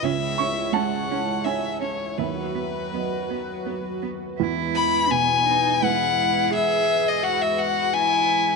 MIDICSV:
0, 0, Header, 1, 5, 480
1, 0, Start_track
1, 0, Key_signature, 4, "major"
1, 0, Tempo, 711744
1, 17, Time_signature, 3, 2, 24, 8
1, 977, Tempo, 737101
1, 2897, Tempo, 705882
1, 5727, End_track
2, 0, Start_track
2, 0, Title_t, "Violin"
2, 0, Program_c, 0, 40
2, 23, Note_on_c, 0, 76, 82
2, 493, Note_on_c, 0, 78, 69
2, 503, Note_off_c, 0, 76, 0
2, 974, Note_on_c, 0, 76, 60
2, 984, Note_off_c, 0, 78, 0
2, 1212, Note_off_c, 0, 76, 0
2, 1216, Note_on_c, 0, 73, 46
2, 1449, Note_on_c, 0, 71, 44
2, 1459, Note_off_c, 0, 73, 0
2, 2656, Note_off_c, 0, 71, 0
2, 3144, Note_on_c, 0, 83, 98
2, 3382, Note_on_c, 0, 80, 104
2, 3392, Note_off_c, 0, 83, 0
2, 3877, Note_on_c, 0, 78, 100
2, 3887, Note_off_c, 0, 80, 0
2, 4352, Note_off_c, 0, 78, 0
2, 4361, Note_on_c, 0, 76, 103
2, 4724, Note_on_c, 0, 75, 88
2, 4734, Note_off_c, 0, 76, 0
2, 4829, Note_on_c, 0, 78, 91
2, 4839, Note_off_c, 0, 75, 0
2, 4952, Note_on_c, 0, 76, 80
2, 4962, Note_off_c, 0, 78, 0
2, 5067, Note_on_c, 0, 78, 87
2, 5078, Note_off_c, 0, 76, 0
2, 5306, Note_on_c, 0, 80, 104
2, 5316, Note_off_c, 0, 78, 0
2, 5727, Note_off_c, 0, 80, 0
2, 5727, End_track
3, 0, Start_track
3, 0, Title_t, "Felt piano"
3, 0, Program_c, 1, 0
3, 0, Control_c, 1, 64, 127
3, 16, Note_on_c, 1, 37, 62
3, 28, Control_c, 1, 64, 0
3, 156, Control_c, 1, 64, 127
3, 256, Note_on_c, 1, 85, 82
3, 477, Note_off_c, 1, 85, 0
3, 487, Note_on_c, 1, 56, 58
3, 497, Note_on_c, 1, 81, 89
3, 953, Note_off_c, 1, 81, 0
3, 974, Note_on_c, 1, 64, 39
3, 976, Note_on_c, 1, 73, 46
3, 987, Note_on_c, 1, 80, 70
3, 1261, Note_off_c, 1, 56, 0
3, 1430, Note_off_c, 1, 64, 0
3, 1432, Note_off_c, 1, 37, 0
3, 1432, Note_off_c, 1, 73, 0
3, 1437, Note_off_c, 1, 80, 0
3, 1454, Note_on_c, 1, 39, 46
3, 1460, Note_on_c, 1, 76, 59
3, 1472, Control_c, 1, 64, 0
3, 1582, Control_c, 1, 64, 127
3, 1919, Note_off_c, 1, 76, 0
3, 1937, Note_on_c, 1, 54, 40
3, 1951, Note_on_c, 1, 75, 41
3, 2400, Note_off_c, 1, 75, 0
3, 2421, Note_on_c, 1, 66, 31
3, 2425, Note_on_c, 1, 71, 34
3, 2705, Note_off_c, 1, 54, 0
3, 2869, Note_off_c, 1, 39, 0
3, 2870, Note_off_c, 1, 66, 0
3, 2872, Note_off_c, 1, 71, 0
3, 2897, Note_on_c, 1, 40, 74
3, 2910, Control_c, 1, 64, 0
3, 3040, Control_c, 1, 64, 127
3, 3381, Note_on_c, 1, 47, 56
3, 3864, Note_on_c, 1, 56, 51
3, 3865, Note_on_c, 1, 64, 59
3, 3869, Note_on_c, 1, 71, 57
3, 4153, Note_off_c, 1, 47, 0
3, 4319, Note_off_c, 1, 40, 0
3, 4357, Control_c, 1, 64, 0
3, 4461, Control_c, 1, 64, 127
3, 5727, Note_off_c, 1, 56, 0
3, 5727, Note_off_c, 1, 64, 0
3, 5727, Note_off_c, 1, 71, 0
3, 5727, End_track
4, 0, Start_track
4, 0, Title_t, "Analog synth pad"
4, 0, Program_c, 2, 89
4, 0, Note_on_c, 2, 64, 53
4, 30, Note_on_c, 2, 56, 59
4, 33, Note_on_c, 2, 73, 64
4, 1455, Note_on_c, 2, 66, 56
4, 1456, Note_on_c, 2, 54, 53
4, 1459, Note_on_c, 2, 71, 59
4, 1462, Note_off_c, 2, 64, 0
4, 1465, Note_off_c, 2, 56, 0
4, 1466, Note_off_c, 2, 73, 0
4, 2888, Note_off_c, 2, 71, 0
4, 2895, Note_off_c, 2, 66, 0
4, 2896, Note_off_c, 2, 54, 0
4, 2896, Note_on_c, 2, 71, 71
4, 2898, Note_on_c, 2, 56, 65
4, 2903, Note_on_c, 2, 52, 77
4, 5727, Note_off_c, 2, 52, 0
4, 5727, Note_off_c, 2, 56, 0
4, 5727, Note_off_c, 2, 71, 0
4, 5727, End_track
5, 0, Start_track
5, 0, Title_t, "Cello"
5, 0, Program_c, 3, 42
5, 29, Note_on_c, 3, 61, 64
5, 83, Note_off_c, 3, 61, 0
5, 265, Note_on_c, 3, 61, 54
5, 319, Note_off_c, 3, 61, 0
5, 502, Note_on_c, 3, 61, 52
5, 556, Note_off_c, 3, 61, 0
5, 748, Note_on_c, 3, 61, 50
5, 802, Note_off_c, 3, 61, 0
5, 977, Note_on_c, 3, 61, 51
5, 1029, Note_off_c, 3, 61, 0
5, 1212, Note_on_c, 3, 61, 41
5, 1265, Note_off_c, 3, 61, 0
5, 1452, Note_on_c, 3, 59, 41
5, 1504, Note_off_c, 3, 59, 0
5, 1691, Note_on_c, 3, 59, 37
5, 1743, Note_off_c, 3, 59, 0
5, 1945, Note_on_c, 3, 59, 36
5, 1997, Note_off_c, 3, 59, 0
5, 2183, Note_on_c, 3, 59, 37
5, 2235, Note_off_c, 3, 59, 0
5, 2417, Note_on_c, 3, 59, 39
5, 2469, Note_off_c, 3, 59, 0
5, 2654, Note_on_c, 3, 59, 38
5, 2706, Note_off_c, 3, 59, 0
5, 2896, Note_on_c, 3, 64, 78
5, 3377, Note_on_c, 3, 59, 64
5, 3387, Note_off_c, 3, 64, 0
5, 3618, Note_on_c, 3, 63, 72
5, 3628, Note_off_c, 3, 59, 0
5, 3860, Note_on_c, 3, 64, 65
5, 3870, Note_off_c, 3, 63, 0
5, 4338, Note_on_c, 3, 68, 82
5, 4348, Note_off_c, 3, 64, 0
5, 4822, Note_on_c, 3, 66, 67
5, 4832, Note_off_c, 3, 68, 0
5, 5299, Note_on_c, 3, 64, 81
5, 5310, Note_off_c, 3, 66, 0
5, 5727, Note_off_c, 3, 64, 0
5, 5727, End_track
0, 0, End_of_file